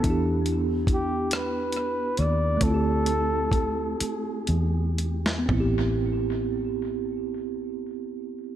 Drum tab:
HH |x-x-x-x-x-x-|x-x-x-x-x-x-|------------|
SD |------r-----|-----------o|------------|
FT |------------|------------|o-----------|
BD |o---o-------|o---o-------|o-----------|